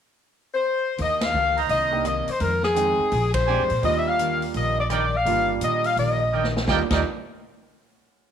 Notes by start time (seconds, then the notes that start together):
0.54 C5
0.98 D#2 D#3 A#3 D4 G4, open hi-hat
1.02 D#5
1.21 F5, snare, ride
1.33 C#2 D#3 A#3 D4 G4
1.57 D#4 C5 D#5 A#5, open hi-hat
1.67 C2 C3 D#3 A#3 D4 D#5, open hi-hat
1.91 A#3 D4 D#4 G4
2.04 C3 D#3 A#3 D4 D#5, cross-stick, closed hi-hat
2.28 C5, muted upright bass stroke, open hi-hat
2.39 F2 D#3 G#3 C4 A#4, open hi-hat
2.63 G#4, snare
2.75 F2 D#3 G#3 C4 D#4 G5, closed hi-hat
2.99 muted upright bass stroke
3.11 A#1 A#2 G#3 D4 G4, open hi-hat
3.34 C5, kick, ride
3.47 A#2 G#3 C4 D4 G4 C5 D5 G#5
3.60 F2
3.70 A#2, open hi-hat
3.82 D#2 D#3 G3 A#3 D4 F4 G4 D#5, open hi-hat
3.99 E5
4.08 F5
4.18 D#3 A#3 D4 G4, closed hi-hat
4.42 open hi-hat
4.54 A#1 D#3 A#3 D4 G4 D#5, open hi-hat
4.80 D5
4.90 D#3 A#3 D4 D#4 G4 A#4 D5 G5, cross-stick, closed hi-hat
5.16 F5
5.25 G1 D#3 G3 A#3 D4 F4 G4, open hi-hat
5.61 A#2 D#3 A#3 D4 G4 D#5, closed hi-hat
5.84 F5, open hi-hat
5.97 A#1 D#3 A#3 D4 D#5, open hi-hat
6.01 G4
6.32 D#3 A#3 D4 D#4 G4 A#4 D5 G5
6.44 snare
6.57 snare
6.67 D#2 D#3 G3 A#3 D4 D#4 F4 G4 A#4 D5 D#5 G5, kick, snare
6.90 D#2 D#3 G3 A#3 D4 D#4 F4 G4 A#4 D5 D#5 G5, kick, snare, crash